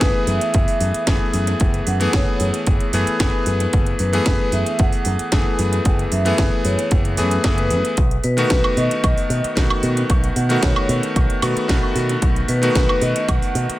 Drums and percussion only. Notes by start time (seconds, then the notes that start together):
0.01 kick, snare, closed hi-hat
0.27 open hi-hat
0.41 closed hi-hat
0.54 kick, closed hi-hat
0.68 open hi-hat
0.80 open hi-hat
0.94 closed hi-hat
1.07 kick, snare, closed hi-hat
1.33 open hi-hat
1.47 closed hi-hat
1.60 kick, closed hi-hat
1.74 closed hi-hat
1.87 open hi-hat
2.01 closed hi-hat
2.13 kick, snare, closed hi-hat
2.40 open hi-hat
2.54 closed hi-hat
2.67 kick, closed hi-hat
2.80 closed hi-hat
2.93 open hi-hat
3.07 closed hi-hat
3.20 kick, snare, closed hi-hat
3.46 open hi-hat
3.60 closed hi-hat
3.73 kick, closed hi-hat
3.86 closed hi-hat
3.99 open hi-hat
4.13 closed hi-hat
4.26 kick, snare, closed hi-hat
4.52 open hi-hat
4.66 closed hi-hat
4.79 kick, closed hi-hat
4.93 open hi-hat
5.05 open hi-hat
5.19 closed hi-hat
5.32 kick, snare, closed hi-hat
5.59 open hi-hat
5.73 closed hi-hat
5.85 kick, closed hi-hat
5.99 closed hi-hat
6.12 open hi-hat
6.26 closed hi-hat
6.38 kick, snare, closed hi-hat
6.65 open hi-hat
6.79 closed hi-hat
6.91 kick, closed hi-hat
7.05 closed hi-hat
7.17 open hi-hat
7.31 closed hi-hat
7.44 kick, snare, closed hi-hat
7.58 closed hi-hat
7.70 open hi-hat
7.85 closed hi-hat
7.97 kick, closed hi-hat
8.11 closed hi-hat
8.24 open hi-hat
8.38 closed hi-hat
8.50 kick, snare, closed hi-hat
8.64 high woodblock
8.77 open hi-hat
8.91 closed hi-hat
9.04 kick, closed hi-hat, high woodblock
9.17 open hi-hat
9.30 open hi-hat
9.44 closed hi-hat
9.57 kick, snare, closed hi-hat
9.70 high woodblock
9.83 open hi-hat
9.97 closed hi-hat
10.10 kick, closed hi-hat
10.24 closed hi-hat
10.36 open hi-hat
10.50 closed hi-hat
10.63 kick, snare, closed hi-hat
10.76 high woodblock
10.89 open hi-hat
11.03 closed hi-hat
11.16 kick, closed hi-hat
11.30 closed hi-hat
11.42 open hi-hat, high woodblock
11.57 closed hi-hat
11.69 kick, snare, closed hi-hat
11.96 open hi-hat
12.09 closed hi-hat
12.22 kick, closed hi-hat
12.36 closed hi-hat
12.48 open hi-hat
12.63 closed hi-hat
12.75 kick, snare, closed hi-hat
12.89 high woodblock
13.02 open hi-hat
13.16 closed hi-hat
13.29 kick, closed hi-hat, high woodblock
13.42 open hi-hat
13.55 open hi-hat
13.70 closed hi-hat